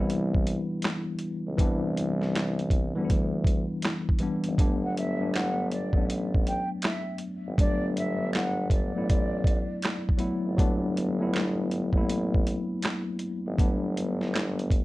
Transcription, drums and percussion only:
0.10 closed hi-hat medium
0.34 kick medium
0.47 closed hi-hat medium
0.82 snare loud
0.82 clap medium
0.82 closed hi-hat medium
1.19 closed hi-hat medium
1.58 kick loud
1.58 closed hi-hat medium
1.97 closed hi-hat medium
2.22 snare soft
2.36 snare medium
2.36 clap medium
2.36 closed hi-hat medium
2.59 closed hi-hat soft
2.70 kick medium
2.70 closed hi-hat medium
3.10 kick medium
3.10 closed hi-hat medium
3.44 kick medium
3.44 closed hi-hat medium
3.82 snare loud
3.82 clap medium
3.82 closed hi-hat medium
4.09 kick medium
4.19 closed hi-hat medium
4.44 closed hi-hat medium
4.58 kick loud
4.58 closed hi-hat medium
4.97 closed hi-hat medium
5.34 finger snap medium
5.34 snare medium
5.34 clap medium
5.34 closed hi-hat medium
5.71 closed hi-hat medium
5.93 kick medium
6.10 closed hi-hat medium
6.34 kick medium
6.47 closed hi-hat medium
6.82 finger snap medium
6.82 snare loud
6.82 clap medium
6.82 closed hi-hat medium
7.18 closed hi-hat medium
7.58 kick loud
7.58 closed hi-hat medium
7.97 closed hi-hat medium
8.33 finger snap medium
8.33 snare medium
8.33 clap medium
8.33 closed hi-hat medium
8.70 kick medium
8.70 closed hi-hat medium
9.10 kick medium
9.10 closed hi-hat medium
9.44 kick loud
9.44 closed hi-hat medium
9.82 finger snap medium
9.82 snare loud
9.82 clap medium
9.82 closed hi-hat medium
10.09 kick medium
10.19 closed hi-hat medium
10.58 kick loud
10.58 closed hi-hat medium
10.97 closed hi-hat medium
11.34 finger snap medium
11.34 snare medium
11.34 clap medium
11.34 closed hi-hat medium
11.71 closed hi-hat medium
11.93 kick medium
12.10 closed hi-hat medium
12.35 kick medium
12.47 closed hi-hat medium
12.82 finger snap medium
12.82 snare loud
12.82 clap medium
12.82 closed hi-hat medium
13.19 closed hi-hat medium
13.58 kick loud
13.58 closed hi-hat medium
13.97 closed hi-hat medium
14.21 snare soft
14.34 finger snap medium
14.34 snare medium
14.34 clap medium
14.34 closed hi-hat medium
14.59 closed hi-hat soft
14.70 kick medium
14.70 closed hi-hat medium

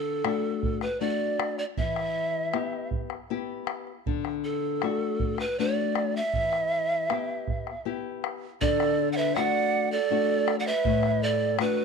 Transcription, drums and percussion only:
0.25 bombo rim medium
0.63 bombo low medium
0.81 bombo rim medium
1.40 bombo rim medium
1.58 bombo rim soft
1.77 bombo low medium
1.96 bombo rim medium
2.54 bombo rim medium
2.73 bombo rim soft
2.91 bombo low medium
3.10 bombo rim medium
3.67 bombo rim medium
3.87 bombo rim soft
4.06 bombo low medium
4.25 bombo rim soft
4.82 bombo rim medium
5.01 bombo rim soft
5.20 bombo low medium
5.38 bombo rim medium
5.95 bombo rim medium
6.14 bombo rim soft
6.33 bombo low medium
6.53 bombo rim soft
6.72 bombo rim soft
6.91 bombo rim soft
7.10 bombo rim medium
7.29 bombo rim soft
7.48 bombo rim soft
7.48 bombo low medium
7.67 bombo rim soft
7.86 bombo rim soft
8.24 bombo rim medium
8.62 bombo low medium
8.80 bombo rim medium
9.36 bombo rim medium
10.48 bombo rim medium
10.66 bombo rim soft
10.85 bombo low medium
11.03 bombo rim medium
11.59 bombo rim medium

